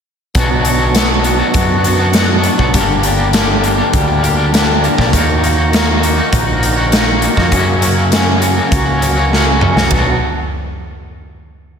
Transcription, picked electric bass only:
0, 0, Header, 1, 2, 480
1, 0, Start_track
1, 0, Key_signature, 2, "minor"
1, 0, Tempo, 597610
1, 280, Time_signature, 4, 2, 24, 8
1, 9473, End_track
2, 0, Start_track
2, 0, Title_t, "Picked electric bass"
2, 0, Program_c, 0, 34
2, 280, Note_on_c, 0, 35, 90
2, 1134, Note_off_c, 0, 35, 0
2, 1241, Note_on_c, 0, 42, 92
2, 1988, Note_off_c, 0, 42, 0
2, 2081, Note_on_c, 0, 35, 89
2, 2187, Note_off_c, 0, 35, 0
2, 2203, Note_on_c, 0, 31, 85
2, 3057, Note_off_c, 0, 31, 0
2, 3162, Note_on_c, 0, 38, 87
2, 3910, Note_off_c, 0, 38, 0
2, 4005, Note_on_c, 0, 34, 74
2, 4121, Note_off_c, 0, 34, 0
2, 4121, Note_on_c, 0, 39, 91
2, 4978, Note_off_c, 0, 39, 0
2, 5084, Note_on_c, 0, 34, 88
2, 5833, Note_off_c, 0, 34, 0
2, 5919, Note_on_c, 0, 41, 87
2, 6029, Note_off_c, 0, 41, 0
2, 6042, Note_on_c, 0, 42, 90
2, 6899, Note_off_c, 0, 42, 0
2, 7000, Note_on_c, 0, 37, 89
2, 7750, Note_off_c, 0, 37, 0
2, 7840, Note_on_c, 0, 36, 78
2, 7950, Note_off_c, 0, 36, 0
2, 7959, Note_on_c, 0, 35, 86
2, 8185, Note_off_c, 0, 35, 0
2, 9473, End_track
0, 0, End_of_file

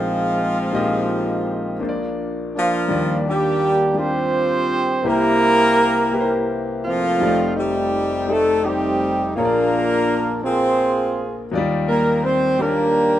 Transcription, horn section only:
0, 0, Header, 1, 2, 480
1, 0, Start_track
1, 0, Key_signature, -3, "major"
1, 0, Tempo, 719424
1, 482, Time_signature, 6, 3, 24, 8
1, 8804, End_track
2, 0, Start_track
2, 0, Title_t, "Horn section"
2, 0, Program_c, 0, 61
2, 0, Note_on_c, 0, 53, 74
2, 0, Note_on_c, 0, 56, 62
2, 0, Note_on_c, 0, 60, 62
2, 0, Note_on_c, 0, 65, 81
2, 1414, Note_off_c, 0, 56, 0
2, 1416, Note_off_c, 0, 60, 0
2, 1450, Note_off_c, 0, 53, 0
2, 1450, Note_off_c, 0, 65, 0
2, 1700, Note_on_c, 0, 62, 56
2, 1701, Note_on_c, 0, 58, 58
2, 1715, Note_on_c, 0, 53, 78
2, 1715, Note_on_c, 0, 65, 85
2, 2152, Note_off_c, 0, 53, 0
2, 2152, Note_off_c, 0, 65, 0
2, 2174, Note_off_c, 0, 58, 0
2, 2176, Note_off_c, 0, 62, 0
2, 2182, Note_on_c, 0, 58, 72
2, 2184, Note_on_c, 0, 62, 74
2, 2192, Note_on_c, 0, 55, 87
2, 2192, Note_on_c, 0, 67, 95
2, 2641, Note_off_c, 0, 55, 0
2, 2641, Note_off_c, 0, 67, 0
2, 2646, Note_on_c, 0, 65, 77
2, 2649, Note_on_c, 0, 67, 77
2, 2662, Note_on_c, 0, 60, 96
2, 2662, Note_on_c, 0, 72, 104
2, 2866, Note_off_c, 0, 58, 0
2, 2866, Note_off_c, 0, 62, 0
2, 3337, Note_off_c, 0, 65, 0
2, 3339, Note_off_c, 0, 67, 0
2, 3371, Note_on_c, 0, 64, 84
2, 3372, Note_off_c, 0, 60, 0
2, 3372, Note_off_c, 0, 72, 0
2, 3378, Note_on_c, 0, 58, 103
2, 3378, Note_on_c, 0, 67, 80
2, 3378, Note_on_c, 0, 70, 112
2, 4362, Note_off_c, 0, 64, 0
2, 4365, Note_off_c, 0, 67, 0
2, 4392, Note_off_c, 0, 58, 0
2, 4392, Note_off_c, 0, 70, 0
2, 4567, Note_on_c, 0, 57, 71
2, 4570, Note_on_c, 0, 53, 85
2, 4570, Note_on_c, 0, 65, 93
2, 4571, Note_on_c, 0, 60, 67
2, 5019, Note_off_c, 0, 53, 0
2, 5019, Note_off_c, 0, 65, 0
2, 5045, Note_off_c, 0, 60, 0
2, 5049, Note_on_c, 0, 55, 90
2, 5049, Note_on_c, 0, 63, 71
2, 5049, Note_on_c, 0, 67, 97
2, 5053, Note_on_c, 0, 60, 68
2, 5257, Note_off_c, 0, 57, 0
2, 5525, Note_off_c, 0, 55, 0
2, 5525, Note_off_c, 0, 67, 0
2, 5533, Note_on_c, 0, 57, 89
2, 5533, Note_on_c, 0, 69, 96
2, 5738, Note_off_c, 0, 63, 0
2, 5740, Note_off_c, 0, 60, 0
2, 5761, Note_on_c, 0, 55, 80
2, 5761, Note_on_c, 0, 67, 86
2, 5764, Note_on_c, 0, 63, 65
2, 5766, Note_on_c, 0, 60, 63
2, 5767, Note_off_c, 0, 57, 0
2, 5767, Note_off_c, 0, 69, 0
2, 6215, Note_off_c, 0, 63, 0
2, 6216, Note_off_c, 0, 60, 0
2, 6241, Note_off_c, 0, 55, 0
2, 6241, Note_off_c, 0, 67, 0
2, 6242, Note_on_c, 0, 58, 92
2, 6242, Note_on_c, 0, 70, 100
2, 6244, Note_on_c, 0, 65, 71
2, 6249, Note_on_c, 0, 62, 75
2, 6934, Note_off_c, 0, 58, 0
2, 6934, Note_off_c, 0, 70, 0
2, 6935, Note_off_c, 0, 65, 0
2, 6938, Note_off_c, 0, 62, 0
2, 6966, Note_on_c, 0, 60, 78
2, 6966, Note_on_c, 0, 72, 85
2, 6971, Note_on_c, 0, 68, 65
2, 6973, Note_on_c, 0, 65, 66
2, 7503, Note_off_c, 0, 60, 0
2, 7503, Note_off_c, 0, 72, 0
2, 7659, Note_off_c, 0, 68, 0
2, 7660, Note_off_c, 0, 65, 0
2, 7928, Note_on_c, 0, 58, 72
2, 7928, Note_on_c, 0, 70, 79
2, 8148, Note_off_c, 0, 58, 0
2, 8148, Note_off_c, 0, 70, 0
2, 8166, Note_on_c, 0, 60, 74
2, 8166, Note_on_c, 0, 72, 81
2, 8400, Note_on_c, 0, 62, 68
2, 8400, Note_on_c, 0, 67, 70
2, 8403, Note_off_c, 0, 60, 0
2, 8403, Note_off_c, 0, 72, 0
2, 8405, Note_on_c, 0, 58, 82
2, 8405, Note_on_c, 0, 70, 89
2, 8804, Note_off_c, 0, 58, 0
2, 8804, Note_off_c, 0, 62, 0
2, 8804, Note_off_c, 0, 67, 0
2, 8804, Note_off_c, 0, 70, 0
2, 8804, End_track
0, 0, End_of_file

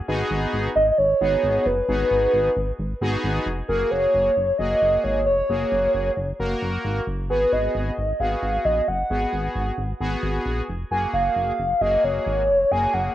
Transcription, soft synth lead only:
0, 0, Header, 1, 2, 480
1, 0, Start_track
1, 0, Tempo, 451128
1, 85, Time_signature, 4, 2, 24, 8
1, 13988, End_track
2, 0, Start_track
2, 0, Title_t, "Soft synth lead"
2, 0, Program_c, 0, 80
2, 803, Note_on_c, 0, 75, 109
2, 878, Note_off_c, 0, 75, 0
2, 968, Note_on_c, 0, 75, 79
2, 1044, Note_on_c, 0, 73, 113
2, 1060, Note_off_c, 0, 75, 0
2, 1768, Note_on_c, 0, 71, 99
2, 1783, Note_off_c, 0, 73, 0
2, 3206, Note_off_c, 0, 71, 0
2, 3922, Note_on_c, 0, 70, 98
2, 4162, Note_on_c, 0, 73, 101
2, 4178, Note_off_c, 0, 70, 0
2, 4873, Note_off_c, 0, 73, 0
2, 4879, Note_on_c, 0, 75, 116
2, 5360, Note_on_c, 0, 73, 99
2, 5376, Note_off_c, 0, 75, 0
2, 5592, Note_off_c, 0, 73, 0
2, 5599, Note_on_c, 0, 73, 97
2, 6519, Note_off_c, 0, 73, 0
2, 7765, Note_on_c, 0, 71, 88
2, 8005, Note_on_c, 0, 75, 98
2, 8021, Note_off_c, 0, 71, 0
2, 8723, Note_on_c, 0, 77, 103
2, 8739, Note_off_c, 0, 75, 0
2, 9203, Note_on_c, 0, 75, 97
2, 9219, Note_off_c, 0, 77, 0
2, 9445, Note_on_c, 0, 78, 107
2, 9461, Note_off_c, 0, 75, 0
2, 10405, Note_off_c, 0, 78, 0
2, 11607, Note_on_c, 0, 80, 109
2, 11715, Note_off_c, 0, 80, 0
2, 11847, Note_on_c, 0, 77, 106
2, 12565, Note_on_c, 0, 75, 96
2, 12581, Note_off_c, 0, 77, 0
2, 12810, Note_on_c, 0, 73, 97
2, 12826, Note_off_c, 0, 75, 0
2, 13528, Note_on_c, 0, 80, 108
2, 13544, Note_off_c, 0, 73, 0
2, 13765, Note_on_c, 0, 78, 94
2, 13781, Note_off_c, 0, 80, 0
2, 13988, Note_off_c, 0, 78, 0
2, 13988, End_track
0, 0, End_of_file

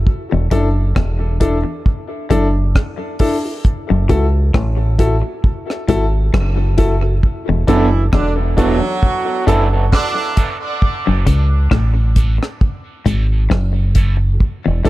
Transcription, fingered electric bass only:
0, 0, Header, 1, 2, 480
1, 0, Start_track
1, 0, Key_signature, 3, "minor"
1, 0, Tempo, 895522
1, 37, Time_signature, 4, 2, 24, 8
1, 7983, End_track
2, 0, Start_track
2, 0, Title_t, "Fingered electric bass"
2, 0, Program_c, 0, 33
2, 181, Note_on_c, 0, 28, 97
2, 275, Note_off_c, 0, 28, 0
2, 278, Note_on_c, 0, 30, 93
2, 504, Note_off_c, 0, 30, 0
2, 518, Note_on_c, 0, 28, 88
2, 874, Note_off_c, 0, 28, 0
2, 1238, Note_on_c, 0, 30, 97
2, 1465, Note_off_c, 0, 30, 0
2, 2097, Note_on_c, 0, 30, 97
2, 2193, Note_off_c, 0, 30, 0
2, 2198, Note_on_c, 0, 37, 97
2, 2424, Note_off_c, 0, 37, 0
2, 2438, Note_on_c, 0, 33, 88
2, 2794, Note_off_c, 0, 33, 0
2, 3158, Note_on_c, 0, 32, 87
2, 3385, Note_off_c, 0, 32, 0
2, 3400, Note_on_c, 0, 30, 95
2, 3858, Note_off_c, 0, 30, 0
2, 4016, Note_on_c, 0, 28, 96
2, 4113, Note_off_c, 0, 28, 0
2, 4120, Note_on_c, 0, 30, 89
2, 4346, Note_off_c, 0, 30, 0
2, 4359, Note_on_c, 0, 28, 86
2, 4715, Note_off_c, 0, 28, 0
2, 5083, Note_on_c, 0, 30, 87
2, 5308, Note_off_c, 0, 30, 0
2, 5942, Note_on_c, 0, 30, 100
2, 6037, Note_off_c, 0, 30, 0
2, 6042, Note_on_c, 0, 37, 87
2, 6268, Note_off_c, 0, 37, 0
2, 6281, Note_on_c, 0, 33, 87
2, 6637, Note_off_c, 0, 33, 0
2, 7003, Note_on_c, 0, 32, 82
2, 7229, Note_off_c, 0, 32, 0
2, 7244, Note_on_c, 0, 30, 102
2, 7701, Note_off_c, 0, 30, 0
2, 7866, Note_on_c, 0, 28, 99
2, 7960, Note_off_c, 0, 28, 0
2, 7983, End_track
0, 0, End_of_file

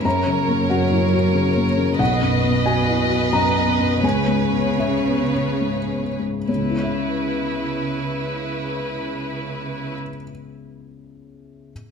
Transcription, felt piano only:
0, 0, Header, 1, 2, 480
1, 0, Start_track
1, 0, Tempo, 657174
1, 34, Time_signature, 3, 2, 24, 8
1, 2434, Tempo, 726392
1, 3394, Tempo, 817439
1, 3874, Tempo, 881057
1, 5794, Tempo, 860832
1, 7346, End_track
2, 0, Start_track
2, 0, Title_t, "Felt piano"
2, 0, Program_c, 0, 0
2, 0, Control_c, 0, 64, 127
2, 36, Note_on_c, 0, 42, 44
2, 39, Note_on_c, 0, 82, 62
2, 47, Control_c, 0, 64, 0
2, 148, Control_c, 0, 64, 127
2, 192, Note_on_c, 0, 49, 29
2, 352, Note_on_c, 0, 58, 34
2, 446, Note_off_c, 0, 49, 0
2, 484, Note_off_c, 0, 82, 0
2, 509, Note_on_c, 0, 78, 49
2, 514, Note_on_c, 0, 66, 40
2, 606, Note_off_c, 0, 58, 0
2, 670, Note_on_c, 0, 64, 28
2, 766, Note_off_c, 0, 66, 0
2, 827, Note_off_c, 0, 64, 0
2, 828, Note_on_c, 0, 66, 39
2, 982, Note_on_c, 0, 49, 33
2, 1079, Note_off_c, 0, 66, 0
2, 1140, Note_on_c, 0, 58, 35
2, 1190, Note_off_c, 0, 78, 0
2, 1235, Note_off_c, 0, 49, 0
2, 1296, Note_on_c, 0, 49, 34
2, 1395, Note_off_c, 0, 58, 0
2, 1432, Note_off_c, 0, 42, 0
2, 1455, Note_on_c, 0, 78, 67
2, 1457, Note_on_c, 0, 35, 41
2, 1458, Note_off_c, 0, 49, 0
2, 1472, Control_c, 0, 64, 0
2, 1586, Control_c, 0, 64, 127
2, 1622, Note_on_c, 0, 42, 34
2, 1783, Note_on_c, 0, 59, 35
2, 1880, Note_off_c, 0, 42, 0
2, 1913, Note_off_c, 0, 78, 0
2, 1941, Note_on_c, 0, 80, 60
2, 1945, Note_on_c, 0, 66, 40
2, 2041, Note_off_c, 0, 59, 0
2, 2108, Note_on_c, 0, 64, 29
2, 2203, Note_off_c, 0, 66, 0
2, 2268, Note_on_c, 0, 66, 33
2, 2270, Note_off_c, 0, 64, 0
2, 2403, Note_off_c, 0, 80, 0
2, 2431, Note_on_c, 0, 42, 32
2, 2432, Note_on_c, 0, 82, 64
2, 2525, Note_off_c, 0, 66, 0
2, 2579, Note_on_c, 0, 59, 33
2, 2677, Note_off_c, 0, 42, 0
2, 2735, Note_on_c, 0, 42, 29
2, 2831, Note_off_c, 0, 59, 0
2, 2869, Note_off_c, 0, 35, 0
2, 2870, Note_off_c, 0, 82, 0
2, 2894, Note_off_c, 0, 42, 0
2, 2896, Note_on_c, 0, 37, 36
2, 2903, Note_on_c, 0, 80, 53
2, 2910, Control_c, 0, 64, 0
2, 3020, Control_c, 0, 64, 127
2, 3056, Note_on_c, 0, 44, 26
2, 3219, Note_on_c, 0, 59, 26
2, 3324, Note_off_c, 0, 44, 0
2, 3369, Note_off_c, 0, 80, 0
2, 3389, Note_on_c, 0, 61, 32
2, 3400, Note_on_c, 0, 76, 37
2, 3485, Note_off_c, 0, 59, 0
2, 3552, Note_on_c, 0, 59, 22
2, 3643, Note_off_c, 0, 61, 0
2, 3710, Note_off_c, 0, 59, 0
2, 3711, Note_on_c, 0, 61, 25
2, 3879, Note_on_c, 0, 44, 22
2, 3968, Note_off_c, 0, 61, 0
2, 4031, Note_on_c, 0, 59, 22
2, 4094, Note_off_c, 0, 76, 0
2, 4131, Note_off_c, 0, 44, 0
2, 4194, Note_on_c, 0, 44, 22
2, 4290, Note_off_c, 0, 59, 0
2, 4330, Note_off_c, 0, 37, 0
2, 4353, Note_off_c, 0, 44, 0
2, 4354, Note_on_c, 0, 73, 33
2, 4355, Note_on_c, 0, 37, 26
2, 4365, Control_c, 0, 64, 0
2, 4393, Note_on_c, 0, 49, 25
2, 4429, Note_on_c, 0, 59, 24
2, 4469, Note_on_c, 0, 64, 24
2, 4488, Control_c, 0, 64, 127
2, 4499, Note_off_c, 0, 73, 0
2, 4507, Note_on_c, 0, 73, 24
2, 4546, Note_on_c, 0, 76, 22
2, 6248, Note_off_c, 0, 37, 0
2, 6287, Note_off_c, 0, 49, 0
2, 6324, Note_off_c, 0, 59, 0
2, 6365, Note_off_c, 0, 64, 0
2, 6403, Note_off_c, 0, 73, 0
2, 6444, Note_off_c, 0, 76, 0
2, 7243, Control_c, 0, 64, 0
2, 7346, End_track
0, 0, End_of_file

